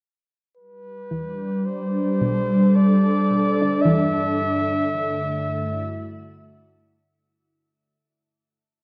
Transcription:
0.57 3.84 G3 medium
0.57 1.67 B4 medium
1.11 2.42 E3 medium
1.21 5.14 D4 medium
1.66 2.77 C5 medium
1.84 5.14 A4 medium
2.02 5.13 D5 medium
2.21 4.06 B2 medium
2.76 3.83 D5 medium
3.61 7.38 D4 medium
3.82 7.10 G2 medium
3.82 7.61 E3 medium
3.82 6.55 E5 medium
4.13 7.09 D3 medium
4.34 7.12 A3 medium
5.25 7.09 E4 medium
5.30 7.10 F#4 medium

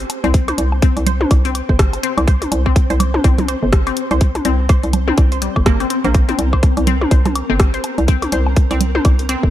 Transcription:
0.00 9.50 C4 medium
0.00 6.17 C5 medium
0.10 closed hi-hat medium
0.10 high woodblock medium
0.24 0.53 C2 loud
0.24 0.26 C4 loud
0.24 closed hi-hat soft
0.34 kick loud
0.34 closed hi-hat medium
0.48 0.50 C5 medium
0.48 closed hi-hat soft
0.48 high tom medium
0.48 high woodblock medium
0.58 0.89 C2 loud
0.58 closed hi-hat medium
0.72 high woodblock medium
0.82 0.85 C4 loud
0.82 kick loud
0.82 closed hi-hat medium
0.97 1.26 C2 loud
0.97 closed hi-hat soft
0.97 high woodblock soft
1.06 1.09 C5 medium
1.06 closed hi-hat loud
1.06 low conga loud
1.21 high tom medium
1.31 1.62 C2 medium
1.31 kick loud
1.31 closed hi-hat medium
1.31 high woodblock medium
1.45 1.47 C4 loud
1.45 closed hi-hat soft
1.55 closed hi-hat medium
1.55 high woodblock soft
1.69 1.98 G1 medium
1.69 1.71 C5 medium
1.69 kick medium
1.79 kick loud
1.79 cross-stick loud
1.79 closed hi-hat medium
1.79 high woodblock soft
1.93 closed hi-hat soft
1.93 high woodblock medium
2.03 2.06 C4 loud
2.03 closed hi-hat medium
2.18 2.47 C2 loud
2.18 closed hi-hat soft
2.18 high woodblock medium
2.27 2.30 C5 medium
2.27 kick loud
2.27 closed hi-hat medium
2.42 closed hi-hat soft
2.42 high tom medium
2.42 high woodblock soft
2.52 2.83 C2 loud
2.52 closed hi-hat medium
2.52 high woodblock medium
2.66 2.68 C4 loud
2.66 kick medium
2.66 high woodblock soft
2.76 kick loud
2.76 closed hi-hat medium
2.90 3.19 C2 loud
2.90 2.92 C5 medium
2.90 closed hi-hat soft
3.00 closed hi-hat loud
3.00 low conga medium
3.00 high woodblock medium
3.14 high tom medium
3.14 high woodblock medium
3.24 3.56 C2 medium
3.24 3.27 C4 loud
3.24 kick loud
3.24 closed hi-hat medium
3.24 high woodblock soft
3.38 closed hi-hat soft
3.38 high tom medium
3.38 low conga medium
3.48 3.51 C5 medium
3.48 closed hi-hat medium
3.48 high woodblock soft
3.63 3.92 G1 medium
3.73 kick loud
3.73 cross-stick loud
3.73 closed hi-hat medium
3.73 high woodblock medium
3.87 3.89 C4 loud
3.87 closed hi-hat soft
3.87 high woodblock medium
3.97 closed hi-hat loud
4.11 4.40 C2 medium
4.11 4.13 C5 medium
4.11 closed hi-hat soft
4.11 high woodblock soft
4.21 kick loud
4.21 closed hi-hat medium
4.35 closed hi-hat soft
4.35 high tom medium
4.35 high woodblock medium
4.45 4.77 C2 loud
4.45 4.48 C4 loud
4.45 closed hi-hat loud
4.69 4.72 C5 medium
4.69 kick loud
4.69 closed hi-hat medium
4.69 high woodblock medium
4.83 5.13 C2 loud
4.83 closed hi-hat soft
4.93 closed hi-hat loud
4.93 low conga medium
4.93 high woodblock medium
5.08 5.10 C4 loud
5.08 high tom medium
5.18 5.49 C2 medium
5.18 kick loud
5.18 closed hi-hat medium
5.18 high woodblock soft
5.32 5.34 C5 medium
5.32 closed hi-hat soft
5.42 5.45 G3 medium
5.42 closed hi-hat medium
5.56 5.85 G1 medium
5.56 kick medium
5.56 high woodblock medium
5.66 5.69 A#3 loud
5.66 kick loud
5.66 cross-stick loud
5.66 closed hi-hat medium
5.80 5.86 C4 medium
5.80 closed hi-hat soft
5.80 high woodblock soft
5.90 5.95 C4 medium
5.90 closed hi-hat loud
6.04 6.34 A#1 loud
6.04 6.07 A#3 loud
6.04 closed hi-hat soft
6.04 high woodblock soft
6.14 9.50 A#4 medium
6.14 kick loud
6.14 closed hi-hat medium
6.14 high woodblock soft
6.29 6.31 C4 loud
6.29 closed hi-hat soft
6.29 high tom medium
6.39 6.70 C2 loud
6.39 closed hi-hat medium
6.53 6.55 C5 medium
6.53 kick medium
6.53 high woodblock medium
6.63 kick loud
6.63 closed hi-hat medium
6.63 high woodblock medium
6.77 7.06 C2 loud
6.77 closed hi-hat soft
6.77 high woodblock soft
6.87 6.90 C4 loud
6.87 closed hi-hat medium
6.87 low conga medium
7.01 high tom medium
7.01 high woodblock soft
7.11 7.43 C2 medium
7.11 7.14 C5 medium
7.11 kick loud
7.11 closed hi-hat medium
7.25 closed hi-hat soft
7.25 high tom medium
7.25 low conga medium
7.25 high woodblock medium
7.35 closed hi-hat medium
7.35 high woodblock medium
7.50 7.79 G1 medium
7.50 7.52 C4 loud
7.60 kick loud
7.60 cross-stick loud
7.60 closed hi-hat medium
7.60 high woodblock soft
7.74 7.76 C5 medium
7.74 closed hi-hat soft
7.84 closed hi-hat medium
7.84 high woodblock medium
7.98 8.27 C2 loud
7.98 closed hi-hat soft
8.08 8.11 C4 loud
8.08 kick loud
8.08 closed hi-hat medium
8.22 closed hi-hat soft
8.22 high tom medium
8.22 high woodblock medium
8.32 8.64 C2 loud
8.32 8.35 C5 medium
8.32 closed hi-hat medium
8.47 high woodblock medium
8.56 kick loud
8.56 closed hi-hat medium
8.71 9.00 C2 loud
8.71 8.73 C4 loud
8.71 closed hi-hat soft
8.71 high woodblock soft
8.81 closed hi-hat medium
8.81 low conga medium
8.95 8.97 C5 medium
8.95 high tom medium
9.05 9.36 C2 medium
9.05 kick loud
9.05 closed hi-hat medium
9.05 high woodblock medium
9.19 closed hi-hat soft
9.29 9.32 C4 loud
9.29 closed hi-hat medium
9.29 high woodblock soft
9.43 9.50 G1 medium
9.43 kick medium

